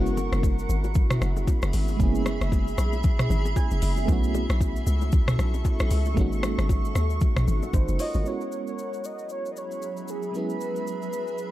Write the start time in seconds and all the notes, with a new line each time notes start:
Already playing: F#1 G#3 B3 C#4 E4 F#4 G#4 E5 B5
0.06 shaker
0.17 low bongo, shaker
0.32 F#1, cross-stick, shaker
0.43 kick, high bongo, shaker
0.59 shaker
0.69 G#1, shaker
0.84 high bongo, shaker
0.94 kick, low conga, shaker
1.10 cross-stick, mid tom, shaker
1.21 F#1, cross-stick, low conga, shaker
1.37 low bongo, shaker
1.47 kick, high bongo, shaker
1.62 F#1, cross-stick, shaker
1.73 G#1, open hi-hat, shaker
1.88 high bongo, shaker
1.97 F#1 G#3 A#3 C#4, kick, low conga, shaker
2.02 B3 E4 G#4
2.15 shaker
2.26 cross-stick, low bongo, shaker
2.41 F#1, cross-stick, shaker
2.52 kick, high bongo, shaker
2.68 shaker
2.78 B1, cross-stick, shaker
2.93 high bongo, shaker
3.03 kick, low conga, shaker
3.19 cross-stick, mid tom, shaker
3.30 G#1, low conga, shaker
3.45 low bongo, shaker
3.56 G#5, kick, high bongo, shaker
3.71 F#1, shaker
3.82 F#1 E5, open hi-hat, shaker
3.97 high bongo, shaker
4.06 B1 A3 B3 C#4 A4 C#6, kick, low conga, shaker
4.10 E4 F#4
4.24 shaker
4.34 low bongo, shaker
4.50 B1, cross-stick, shaker
4.61 kick, high bongo, shaker
4.76 shaker
4.87 C#2, shaker
5.01 high bongo, shaker
5.12 kick, low conga, shaker
5.28 cross-stick, mid tom, shaker
5.39 B1, cross-stick, low conga, shaker
5.54 low bongo, shaker
5.65 kick, high bongo, shaker
5.80 B1, cross-stick, shaker
5.91 C#2, open hi-hat, shaker
6.05 high bongo, shaker
6.14 G#1 G#3 A#3 C#4 A#4 F#5, kick, low conga, shaker
6.19 D#4 F#4
6.32 shaker
6.43 cross-stick, low bongo, shaker
6.58 G#1, cross-stick, shaker
6.69 kick, high bongo, shaker
6.85 shaker
6.95 D#2, cross-stick, shaker
7.10 shaker
7.21 kick, low conga, shaker
7.36 A#1, cross-stick, mid tom, shaker
7.47 G#1, low conga, shaker
7.63 low bongo, shaker
7.73 G#1 D#4 C5, kick, high bongo, shaker
7.88 F#1, shaker
7.99 F4 C#5 D#5, open hi-hat, shaker
8.14 G#1 F#4 D#5, high bongo, shaker
8.23 F#3 G#3 B3 C#4 G#4 E5 B5, shaker
8.27 E4 F#4 C#5
8.41 shaker
8.52 shaker
8.67 C#5, shaker
8.78 shaker
8.93 shaker
9.04 D#5, shaker
9.19 shaker
9.29 C#5, shaker
9.46 shaker
9.52 D#5
9.56 C#5, shaker
9.71 shaker
9.82 shaker
9.97 shaker
10.08 G#4, shaker
10.23 shaker
10.32 G#3 B3 C#4, shaker
10.36 E4 G#4 B4
10.50 shaker
10.61 shaker
10.76 shaker
10.87 shaker
11.02 shaker
11.13 shaker
11.27 shaker
11.38 shaker